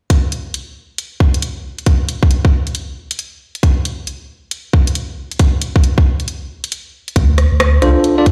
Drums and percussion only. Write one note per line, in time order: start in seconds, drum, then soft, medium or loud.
0.10 kick loud
0.10 closed hi-hat medium
0.32 closed hi-hat medium
0.54 closed hi-hat medium
0.98 closed hi-hat medium
1.20 kick loud
1.34 closed hi-hat medium
1.42 closed hi-hat medium
1.78 closed hi-hat soft
1.86 kick loud
1.86 closed hi-hat medium
2.09 closed hi-hat medium
2.23 kick loud
2.31 closed hi-hat medium
2.45 kick loud
2.67 closed hi-hat soft
2.75 closed hi-hat medium
3.11 closed hi-hat medium
3.19 closed hi-hat medium
3.55 closed hi-hat soft
3.63 kick loud
3.63 closed hi-hat medium
3.85 closed hi-hat medium
4.07 closed hi-hat medium
4.51 closed hi-hat medium
4.73 kick loud
4.87 closed hi-hat medium
4.95 closed hi-hat medium
5.31 closed hi-hat soft
5.39 kick loud
5.39 closed hi-hat medium
5.62 closed hi-hat medium
5.76 kick loud
5.84 closed hi-hat medium
5.98 kick loud
6.20 closed hi-hat soft
6.28 closed hi-hat medium
6.64 closed hi-hat medium
6.72 closed hi-hat medium
7.08 closed hi-hat soft
7.16 kick loud
7.16 closed hi-hat medium
7.38 cross-stick soft
7.38 open hi-hat medium
7.60 cross-stick loud
7.60 closed hi-hat medium
7.82 cross-stick medium
7.82 open hi-hat loud
8.04 closed hi-hat medium
8.26 kick loud
8.26 open hi-hat loud